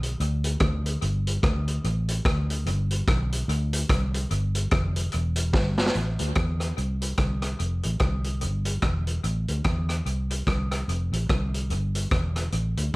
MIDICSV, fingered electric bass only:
0, 0, Header, 1, 2, 480
1, 0, Start_track
1, 0, Key_signature, 0, "minor"
1, 0, Tempo, 411241
1, 1193, Time_signature, 4, 2, 24, 8
1, 15122, End_track
2, 0, Start_track
2, 0, Title_t, "Fingered electric bass"
2, 0, Program_c, 0, 33
2, 0, Note_on_c, 0, 35, 83
2, 161, Note_off_c, 0, 35, 0
2, 234, Note_on_c, 0, 38, 100
2, 641, Note_off_c, 0, 38, 0
2, 713, Note_on_c, 0, 38, 85
2, 1121, Note_off_c, 0, 38, 0
2, 1194, Note_on_c, 0, 31, 104
2, 1601, Note_off_c, 0, 31, 0
2, 1670, Note_on_c, 0, 38, 84
2, 2079, Note_off_c, 0, 38, 0
2, 2151, Note_on_c, 0, 33, 106
2, 2559, Note_off_c, 0, 33, 0
2, 2630, Note_on_c, 0, 38, 95
2, 3105, Note_on_c, 0, 31, 103
2, 3122, Note_off_c, 0, 38, 0
2, 3514, Note_off_c, 0, 31, 0
2, 3594, Note_on_c, 0, 35, 88
2, 4000, Note_off_c, 0, 35, 0
2, 4064, Note_on_c, 0, 38, 107
2, 4474, Note_off_c, 0, 38, 0
2, 4547, Note_on_c, 0, 36, 95
2, 4955, Note_off_c, 0, 36, 0
2, 5027, Note_on_c, 0, 31, 113
2, 5435, Note_off_c, 0, 31, 0
2, 5508, Note_on_c, 0, 29, 89
2, 5915, Note_off_c, 0, 29, 0
2, 6000, Note_on_c, 0, 28, 101
2, 6465, Note_off_c, 0, 28, 0
2, 6465, Note_on_c, 0, 31, 78
2, 6873, Note_off_c, 0, 31, 0
2, 6948, Note_on_c, 0, 33, 95
2, 7190, Note_off_c, 0, 33, 0
2, 7236, Note_on_c, 0, 38, 82
2, 7399, Note_off_c, 0, 38, 0
2, 7425, Note_on_c, 0, 40, 80
2, 7833, Note_off_c, 0, 40, 0
2, 7911, Note_on_c, 0, 36, 86
2, 8317, Note_off_c, 0, 36, 0
2, 8383, Note_on_c, 0, 36, 79
2, 8793, Note_off_c, 0, 36, 0
2, 8869, Note_on_c, 0, 29, 92
2, 9111, Note_off_c, 0, 29, 0
2, 9164, Note_on_c, 0, 33, 87
2, 9325, Note_off_c, 0, 33, 0
2, 9343, Note_on_c, 0, 36, 82
2, 9835, Note_on_c, 0, 31, 95
2, 9853, Note_off_c, 0, 36, 0
2, 10240, Note_off_c, 0, 31, 0
2, 10298, Note_on_c, 0, 28, 88
2, 10710, Note_off_c, 0, 28, 0
2, 10784, Note_on_c, 0, 33, 101
2, 11029, Note_off_c, 0, 33, 0
2, 11071, Note_on_c, 0, 38, 84
2, 11238, Note_off_c, 0, 38, 0
2, 11262, Note_on_c, 0, 40, 93
2, 11673, Note_off_c, 0, 40, 0
2, 11738, Note_on_c, 0, 36, 89
2, 12151, Note_off_c, 0, 36, 0
2, 12217, Note_on_c, 0, 36, 91
2, 12631, Note_off_c, 0, 36, 0
2, 12698, Note_on_c, 0, 29, 102
2, 12946, Note_off_c, 0, 29, 0
2, 12976, Note_on_c, 0, 33, 85
2, 13149, Note_off_c, 0, 33, 0
2, 13187, Note_on_c, 0, 36, 90
2, 13657, Note_on_c, 0, 31, 96
2, 13674, Note_off_c, 0, 36, 0
2, 14071, Note_off_c, 0, 31, 0
2, 14141, Note_on_c, 0, 28, 80
2, 14554, Note_off_c, 0, 28, 0
2, 14621, Note_on_c, 0, 33, 103
2, 14869, Note_off_c, 0, 33, 0
2, 14911, Note_on_c, 0, 38, 78
2, 15079, Note_off_c, 0, 38, 0
2, 15122, End_track
0, 0, End_of_file